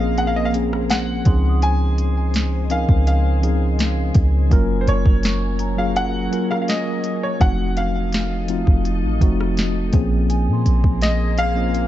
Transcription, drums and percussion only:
0.18 closed hi-hat
0.54 closed hi-hat
0.73 cross-stick
0.90 snare, closed hi-hat
1.25 kick, closed hi-hat
1.62 closed hi-hat
1.98 closed hi-hat
2.34 snare, closed hi-hat
2.70 closed hi-hat
2.89 kick
3.07 closed hi-hat
3.43 closed hi-hat
3.79 snare, closed hi-hat
4.14 kick, closed hi-hat
4.51 kick, closed hi-hat
4.87 closed hi-hat
5.06 kick
5.23 snare, closed hi-hat
5.59 closed hi-hat
5.96 closed hi-hat
6.33 closed hi-hat
6.52 cross-stick
6.68 snare, closed hi-hat
7.04 closed hi-hat
7.41 kick, closed hi-hat
7.77 closed hi-hat
8.12 snare, closed hi-hat
8.48 closed hi-hat
8.67 kick
8.85 closed hi-hat
9.21 kick, closed hi-hat
9.41 cross-stick
9.57 snare, closed hi-hat
9.93 kick, closed hi-hat
10.30 closed hi-hat
10.66 closed hi-hat
10.84 kick
11.02 snare, closed hi-hat
11.38 closed hi-hat
11.74 closed hi-hat

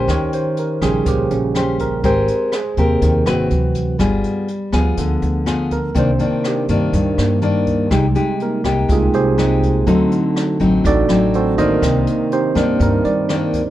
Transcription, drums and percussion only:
0.08 kick, cross-stick, closed hi-hat
0.33 closed hi-hat
0.57 closed hi-hat
0.81 kick, cross-stick, closed hi-hat
1.06 kick, closed hi-hat
1.31 closed hi-hat
1.55 cross-stick, closed hi-hat
1.79 kick, closed hi-hat
2.04 kick, closed hi-hat
2.28 closed hi-hat
2.52 cross-stick, closed hi-hat
2.77 kick, closed hi-hat
3.02 kick, closed hi-hat
3.26 cross-stick, closed hi-hat
3.50 closed hi-hat
3.75 kick, closed hi-hat
3.99 kick, cross-stick, closed hi-hat
4.24 closed hi-hat
4.48 closed hi-hat
4.73 kick, cross-stick, closed hi-hat
4.97 kick, closed hi-hat
5.22 closed hi-hat
5.47 cross-stick, closed hi-hat
5.71 kick, closed hi-hat
5.95 kick, closed hi-hat
6.19 closed hi-hat
6.44 cross-stick, closed hi-hat
6.68 kick, closed hi-hat
6.93 kick, closed hi-hat
7.18 cross-stick, closed hi-hat
7.42 closed hi-hat
7.66 kick, closed hi-hat
7.91 kick, cross-stick, closed hi-hat
8.15 closed hi-hat
8.40 closed hi-hat
8.64 kick, cross-stick, closed hi-hat
8.89 kick, closed hi-hat
9.14 closed hi-hat
9.38 cross-stick, closed hi-hat
9.63 kick, closed hi-hat
9.87 kick, closed hi-hat
10.11 closed hi-hat
10.36 cross-stick, closed hi-hat
10.60 kick, closed hi-hat
10.85 kick, closed hi-hat
11.09 cross-stick, closed hi-hat
11.34 closed hi-hat
11.58 kick, closed hi-hat
11.82 kick, cross-stick, closed hi-hat
12.07 closed hi-hat
12.32 closed hi-hat
12.56 kick, cross-stick, closed hi-hat
12.80 kick, closed hi-hat
13.05 closed hi-hat
13.29 cross-stick, closed hi-hat
13.53 kick, closed hi-hat

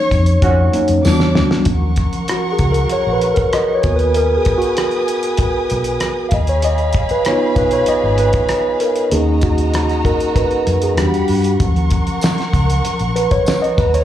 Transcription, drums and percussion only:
0.11 kick, closed hi-hat
0.26 closed hi-hat
0.42 kick, closed hi-hat
0.74 closed hi-hat
0.88 closed hi-hat
1.05 snare, tambourine
1.20 snare
1.35 snare
1.51 snare
1.65 kick, closed hi-hat
1.96 kick, cross-stick, closed hi-hat
2.13 closed hi-hat
2.28 cross-stick, closed hi-hat
2.59 kick, closed hi-hat
2.74 closed hi-hat
2.89 closed hi-hat
3.21 closed hi-hat
3.36 kick, closed hi-hat
3.53 cross-stick, closed hi-hat
3.83 kick, closed hi-hat
3.99 closed hi-hat
4.14 closed hi-hat
4.45 kick, cross-stick, closed hi-hat
4.62 closed hi-hat
4.77 cross-stick, closed hi-hat
4.91 closed hi-hat
5.08 closed hi-hat
5.23 closed hi-hat
5.37 kick, closed hi-hat
5.70 closed hi-hat
5.84 closed hi-hat
6.00 cross-stick, closed hi-hat
6.31 kick, closed hi-hat
6.47 closed hi-hat
6.62 closed hi-hat
6.78 closed hi-hat
6.93 kick, closed hi-hat
7.09 closed hi-hat
7.25 cross-stick, closed hi-hat
7.56 kick, closed hi-hat
7.71 closed hi-hat
7.86 closed hi-hat
8.18 closed hi-hat
8.33 kick, closed hi-hat
8.49 cross-stick, closed hi-hat
8.80 closed hi-hat
8.96 closed hi-hat
9.11 closed hi-hat
9.41 kick, closed hi-hat
9.58 closed hi-hat
9.74 cross-stick, closed hi-hat
9.89 cross-stick, closed hi-hat
10.05 kick, closed hi-hat
10.20 closed hi-hat
10.36 kick, closed hi-hat
10.51 closed hi-hat
10.67 closed hi-hat
10.82 closed hi-hat
10.97 cross-stick, closed hi-hat
11.14 closed hi-hat
11.28 open hi-hat
11.44 closed hi-hat
11.60 kick, closed hi-hat
11.76 closed hi-hat
11.90 kick, closed hi-hat
12.07 closed hi-hat
12.21 snare, closed hi-hat, tambourine
12.38 snare, closed hi-hat
12.53 kick, closed hi-hat
12.70 closed hi-hat
12.85 closed hi-hat
12.99 closed hi-hat
13.16 closed hi-hat
13.31 kick, closed hi-hat
13.46 snare, closed hi-hat, tambourine
13.64 closed hi-hat
13.78 kick, closed hi-hat
13.94 closed hi-hat

